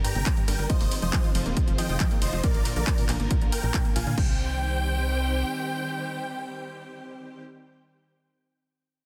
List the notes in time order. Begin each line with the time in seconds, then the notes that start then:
Already playing: D3 G3 A#3 G4 A#4
0.04 G2 G5 A#5, open hi-hat, ride
0.15 G1 C3, closed hi-hat
0.26 kick, clap, closed hi-hat
0.37 G2, closed hi-hat
0.48 G1 G2 A#4 G5, open hi-hat, ride
0.59 G1 G3, closed hi-hat
0.69 D#3 F3 G#3 C4 F4 C5 D#5, kick, closed hi-hat
0.81 F1 A#3, open hi-hat
0.91 open hi-hat, ride
1.02 F1 F3 C5 D#5, closed hi-hat
1.13 F3, kick, clap, closed hi-hat
1.24 F4, closed hi-hat
1.35 F1 F3, open hi-hat, ride
1.46 D#1 A#3, closed hi-hat
1.57 kick, closed hi-hat
1.68 F1 F3, closed hi-hat
1.78 F3 D#5 G5, open hi-hat, ride
1.89 F1 F4, closed hi-hat
2.00 F3, kick, clap, closed hi-hat
2.11 A#3, closed hi-hat
2.22 F1 C5 D#5, open hi-hat, ride
2.33 F1 F3, closed hi-hat
2.44 A#2 D3 F3 A#3 A#4 D5, kick, closed hi-hat
2.54 A#1 A#3, closed hi-hat
2.65 A#2, open hi-hat, ride
2.76 A#1 D3 A#4 D5, closed hi-hat
2.87 kick, clap, closed hi-hat
2.98 A#2, open hi-hat
3.09 A#1 A#2, clap, open hi-hat, ride
3.20 G#1 A#3, closed hi-hat
3.31 A#2, kick, closed hi-hat
3.41 A#1 D3, closed hi-hat
3.52 A#4 G5, open hi-hat, ride
3.63 A#1 A#2, closed hi-hat
3.74 A#2, kick, clap, closed hi-hat
3.85 A#3, closed hi-hat
3.96 A#1 A#2 F5 G#5, open hi-hat, ride
4.07 A#2 D3, closed hi-hat
4.18 C2 C3 D#3 G3 C4 G4 C5 G5, kick, crash